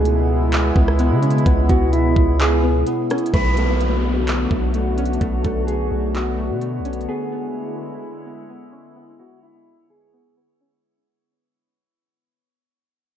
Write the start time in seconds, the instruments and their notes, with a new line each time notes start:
Already playing: 808-style bass C#2, ambient pad B2 G#3 B3 E4, synth pluck B3, synth texture B3 E4 C#5, clean electric guitar G#4
0.05 closed hi-hat
0.52 clap, closed hi-hat
0.76 808-style bass C#2, synth pluck B3, kick
0.88 cross-stick
0.99 synth pluck B3, closed hi-hat
1.11 808-style bass C#3
1.22 synth pluck C#4, closed hi-hat
1.30 closed hi-hat
1.38 closed hi-hat
1.46 808-style bass C#2, synth pluck B3, kick, closed hi-hat
1.69 808-style bass C#2, synth pluck B3, clean electric guitar F#4, kick, closed hi-hat
1.93 clean electric guitar E4, closed hi-hat
2.16 808-style bass C#2, kick
2.40 clean electric guitar G#4, clap, closed hi-hat
2.63 synth pluck B3
2.87 synth pluck B3, closed hi-hat
3.10 synth pluck C#4, cross-stick, closed hi-hat
3.18 closed hi-hat
3.26 closed hi-hat
3.33 808-style bass B1, ambient pad D3 A3 B3 F#4, synth pluck A3, synth texture A3 D4 C#5, clean electric guitar B4, kick, closed hi-hat, downlifter
3.57 synth pluck A3, closed hi-hat
3.81 closed hi-hat
4.27 clap, closed hi-hat
4.51 808-style bass B1, synth pluck A3, kick
4.74 synth pluck A3, closed hi-hat
4.98 synth pluck C#4, closed hi-hat
5.05 closed hi-hat
5.13 closed hi-hat
5.21 808-style bass B1, synth pluck A3, kick, closed hi-hat
5.44 808-style bass B1, synth pluck A3, clean electric guitar A4, kick, closed hi-hat
5.67 clean electric guitar G#4, closed hi-hat
5.91 808-style bass B1
6.15 clean electric guitar F#4, clap, closed hi-hat
6.38 synth pluck A3
6.50 808-style bass B2
6.61 synth pluck A3, closed hi-hat
6.79 808-style bass B1
6.85 synth pluck C#4, closed hi-hat
6.93 closed hi-hat
7.01 closed hi-hat
7.08 ambient pad G#3 E4, synth texture B3 E4, synth pluck B3, clean electric guitar G#4
7.32 synth pluck B3
8.26 synth pluck B3
8.50 synth pluck B3
8.72 synth pluck C#4
8.96 synth pluck B3
9.19 synth pluck B3, clean electric guitar F#4
9.43 clean electric guitar E4
9.90 clean electric guitar G#4
10.13 synth pluck B3
10.37 synth pluck B3
10.61 synth pluck C#4